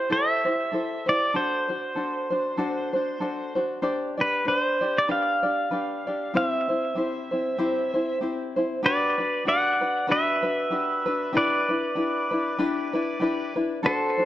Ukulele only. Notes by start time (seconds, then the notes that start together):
0.10 E4 G4 A4 C5
0.45 E4 G4 C5
0.72 E4 G4 A4 C5
1.06 E4 G4 C5
1.34 D4 F#4 A4 C5
1.69 D4 F#4 C5
1.96 D4 F#4 A4 C5
2.30 D4 F#4 C5
2.57 D4 F#4 A4 C5
2.93 D4 F#4 C5
3.20 D4 F#4 A4 C5
3.55 D4 F#4 C5
3.82 D4 G4 C5 D5
4.17 D4 G4 D5
4.45 D4 G4 C5 D5
4.81 D4 G4 D5
5.08 D4 G4 B4 D5
5.43 D4 G4 D5
5.71 D4 G4 B4 D5
6.07 D4 G4 D5
6.34 C4 E4 G4 C5
6.69 C4 E4 C5
6.95 C4 E4 G4 C5
7.31 C4 E4 C5
7.58 C4 E4 G4 C5
7.94 C4 E4 C5
8.21 C4 E4 G4 C5
8.56 C4 E4 C5
8.83 D4 F#4 G4 B4
9.18 D4 F#4 B4
9.45 D4 F#4 G4 B4
9.81 D4 F#4 B4
10.07 D4 F#4 G4 B4
10.43 D4 F#4 B4
10.71 D4 F#4 G4 B4
11.06 D4 F#4 B4
11.33 D4 E4 G4 B4
11.69 D4 E4 B4
11.95 D4 E4 G4 B4
12.31 D4 E4 B4
12.59 D4 E4 G4 B4
12.93 D4 E4 B4
13.20 D4 E4 G4 B4
13.56 D4 E4 B4
13.83 D4 F#4 A4 C5
14.18 D4 F#4 C5